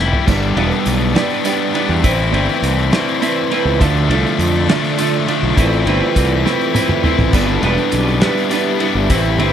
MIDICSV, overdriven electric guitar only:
0, 0, Header, 1, 2, 480
1, 0, Start_track
1, 0, Tempo, 588235
1, 224, Time_signature, 6, 3, 24, 8
1, 7776, End_track
2, 0, Start_track
2, 0, Title_t, "Overdriven electric guitar"
2, 0, Program_c, 0, 29
2, 0, Note_on_c, 0, 55, 70
2, 0, Note_on_c, 0, 59, 63
2, 0, Note_on_c, 0, 64, 70
2, 0, Note_on_c, 0, 67, 72
2, 207, Note_off_c, 0, 55, 0
2, 211, Note_off_c, 0, 59, 0
2, 217, Note_on_c, 0, 55, 102
2, 221, Note_off_c, 0, 64, 0
2, 221, Note_off_c, 0, 67, 0
2, 221, Note_on_c, 0, 59, 95
2, 225, Note_on_c, 0, 62, 100
2, 445, Note_off_c, 0, 55, 0
2, 454, Note_off_c, 0, 62, 0
2, 455, Note_off_c, 0, 59, 0
2, 455, Note_on_c, 0, 55, 78
2, 459, Note_on_c, 0, 59, 94
2, 464, Note_on_c, 0, 62, 84
2, 927, Note_off_c, 0, 55, 0
2, 933, Note_off_c, 0, 59, 0
2, 937, Note_off_c, 0, 62, 0
2, 937, Note_on_c, 0, 55, 95
2, 942, Note_on_c, 0, 59, 102
2, 947, Note_on_c, 0, 62, 102
2, 1169, Note_off_c, 0, 55, 0
2, 1173, Note_off_c, 0, 59, 0
2, 1178, Note_off_c, 0, 62, 0
2, 1178, Note_on_c, 0, 55, 76
2, 1183, Note_on_c, 0, 59, 88
2, 1188, Note_on_c, 0, 62, 99
2, 1409, Note_off_c, 0, 55, 0
2, 1413, Note_off_c, 0, 59, 0
2, 1418, Note_off_c, 0, 62, 0
2, 1419, Note_on_c, 0, 55, 88
2, 1423, Note_on_c, 0, 59, 92
2, 1428, Note_on_c, 0, 62, 101
2, 1648, Note_off_c, 0, 55, 0
2, 1650, Note_off_c, 0, 59, 0
2, 1653, Note_off_c, 0, 62, 0
2, 1659, Note_on_c, 0, 52, 92
2, 1667, Note_on_c, 0, 60, 105
2, 1667, Note_on_c, 0, 64, 108
2, 1898, Note_off_c, 0, 60, 0
2, 1899, Note_off_c, 0, 52, 0
2, 1903, Note_on_c, 0, 52, 80
2, 1908, Note_off_c, 0, 64, 0
2, 1908, Note_on_c, 0, 60, 76
2, 1911, Note_on_c, 0, 64, 86
2, 2376, Note_off_c, 0, 60, 0
2, 2377, Note_off_c, 0, 52, 0
2, 2381, Note_on_c, 0, 52, 87
2, 2386, Note_off_c, 0, 64, 0
2, 2386, Note_on_c, 0, 60, 99
2, 2389, Note_on_c, 0, 64, 109
2, 2614, Note_off_c, 0, 52, 0
2, 2614, Note_off_c, 0, 60, 0
2, 2618, Note_on_c, 0, 52, 82
2, 2624, Note_on_c, 0, 60, 92
2, 2625, Note_off_c, 0, 64, 0
2, 2628, Note_on_c, 0, 64, 94
2, 2857, Note_off_c, 0, 60, 0
2, 2858, Note_off_c, 0, 52, 0
2, 2861, Note_on_c, 0, 52, 82
2, 2866, Note_on_c, 0, 60, 93
2, 2867, Note_off_c, 0, 64, 0
2, 2871, Note_on_c, 0, 64, 102
2, 3092, Note_off_c, 0, 60, 0
2, 3094, Note_off_c, 0, 52, 0
2, 3097, Note_on_c, 0, 53, 94
2, 3101, Note_on_c, 0, 57, 87
2, 3102, Note_off_c, 0, 64, 0
2, 3105, Note_on_c, 0, 62, 108
2, 3327, Note_off_c, 0, 53, 0
2, 3337, Note_off_c, 0, 62, 0
2, 3337, Note_on_c, 0, 53, 87
2, 3339, Note_off_c, 0, 57, 0
2, 3343, Note_on_c, 0, 57, 90
2, 3346, Note_on_c, 0, 62, 88
2, 3806, Note_off_c, 0, 53, 0
2, 3815, Note_off_c, 0, 57, 0
2, 3816, Note_on_c, 0, 53, 94
2, 3818, Note_off_c, 0, 62, 0
2, 3824, Note_on_c, 0, 57, 93
2, 3828, Note_on_c, 0, 62, 96
2, 4051, Note_off_c, 0, 53, 0
2, 4057, Note_off_c, 0, 57, 0
2, 4061, Note_on_c, 0, 53, 86
2, 4064, Note_off_c, 0, 62, 0
2, 4067, Note_on_c, 0, 57, 85
2, 4074, Note_on_c, 0, 62, 90
2, 4294, Note_off_c, 0, 53, 0
2, 4300, Note_off_c, 0, 57, 0
2, 4303, Note_on_c, 0, 53, 82
2, 4304, Note_off_c, 0, 62, 0
2, 4309, Note_on_c, 0, 57, 98
2, 4314, Note_on_c, 0, 62, 97
2, 4530, Note_off_c, 0, 53, 0
2, 4533, Note_off_c, 0, 57, 0
2, 4535, Note_off_c, 0, 62, 0
2, 4541, Note_on_c, 0, 52, 93
2, 4545, Note_on_c, 0, 60, 102
2, 4551, Note_on_c, 0, 64, 111
2, 4777, Note_off_c, 0, 60, 0
2, 4780, Note_off_c, 0, 52, 0
2, 4783, Note_on_c, 0, 52, 76
2, 4786, Note_on_c, 0, 60, 88
2, 4788, Note_off_c, 0, 64, 0
2, 4791, Note_on_c, 0, 64, 88
2, 5256, Note_off_c, 0, 60, 0
2, 5258, Note_off_c, 0, 52, 0
2, 5262, Note_on_c, 0, 52, 94
2, 5265, Note_on_c, 0, 60, 93
2, 5266, Note_off_c, 0, 64, 0
2, 5270, Note_on_c, 0, 64, 97
2, 5492, Note_off_c, 0, 52, 0
2, 5493, Note_off_c, 0, 60, 0
2, 5496, Note_on_c, 0, 52, 77
2, 5502, Note_on_c, 0, 60, 80
2, 5504, Note_off_c, 0, 64, 0
2, 5507, Note_on_c, 0, 64, 91
2, 5735, Note_off_c, 0, 60, 0
2, 5737, Note_off_c, 0, 52, 0
2, 5741, Note_on_c, 0, 52, 83
2, 5744, Note_on_c, 0, 60, 87
2, 5745, Note_off_c, 0, 64, 0
2, 5748, Note_on_c, 0, 64, 97
2, 5970, Note_off_c, 0, 60, 0
2, 5979, Note_off_c, 0, 52, 0
2, 5982, Note_on_c, 0, 55, 86
2, 5987, Note_off_c, 0, 64, 0
2, 5987, Note_on_c, 0, 59, 111
2, 5991, Note_on_c, 0, 62, 101
2, 6208, Note_off_c, 0, 55, 0
2, 6217, Note_off_c, 0, 59, 0
2, 6217, Note_off_c, 0, 62, 0
2, 6218, Note_on_c, 0, 55, 82
2, 6221, Note_on_c, 0, 59, 90
2, 6227, Note_on_c, 0, 62, 90
2, 6689, Note_off_c, 0, 55, 0
2, 6695, Note_off_c, 0, 59, 0
2, 6698, Note_off_c, 0, 62, 0
2, 6699, Note_on_c, 0, 55, 90
2, 6705, Note_on_c, 0, 59, 108
2, 6708, Note_on_c, 0, 62, 100
2, 6928, Note_off_c, 0, 55, 0
2, 6935, Note_off_c, 0, 59, 0
2, 6938, Note_on_c, 0, 55, 90
2, 6939, Note_off_c, 0, 62, 0
2, 6945, Note_on_c, 0, 59, 80
2, 6949, Note_on_c, 0, 62, 94
2, 7171, Note_off_c, 0, 55, 0
2, 7176, Note_off_c, 0, 59, 0
2, 7180, Note_on_c, 0, 55, 91
2, 7181, Note_off_c, 0, 62, 0
2, 7186, Note_on_c, 0, 59, 96
2, 7191, Note_on_c, 0, 62, 94
2, 7408, Note_off_c, 0, 55, 0
2, 7411, Note_off_c, 0, 59, 0
2, 7413, Note_off_c, 0, 62, 0
2, 7420, Note_on_c, 0, 52, 92
2, 7423, Note_on_c, 0, 60, 99
2, 7425, Note_on_c, 0, 64, 109
2, 7654, Note_off_c, 0, 60, 0
2, 7656, Note_off_c, 0, 52, 0
2, 7659, Note_on_c, 0, 52, 80
2, 7664, Note_on_c, 0, 60, 88
2, 7666, Note_off_c, 0, 64, 0
2, 7669, Note_on_c, 0, 64, 94
2, 7776, Note_off_c, 0, 52, 0
2, 7776, Note_off_c, 0, 60, 0
2, 7776, Note_off_c, 0, 64, 0
2, 7776, End_track
0, 0, End_of_file